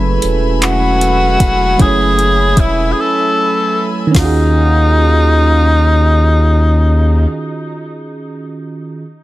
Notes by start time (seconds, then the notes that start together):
Already playing: F#1 F#3 A3 C#4 E4 G#4 A4 B4 E5 G#5 B5
0.22 E1, closed hi-hat
0.62 F#4, clap, closed hi-hat
1.01 closed hi-hat
1.40 E1, kick, closed hi-hat
1.77 F#1 F#3 C#4 E4, kick, closed hi-hat
1.81 A3 G#4 G#5
1.86 C#5
2.19 closed hi-hat
2.57 E1 E4, kick, closed hi-hat
2.92 G#4
3.00 A4
4.07 D#3
4.11 C#4, kick, open hi-hat
4.15 D#2 D#3 F#3 C#4 D#4 F4 G#4 F5, snare
4.20 F#4
4.25 G#4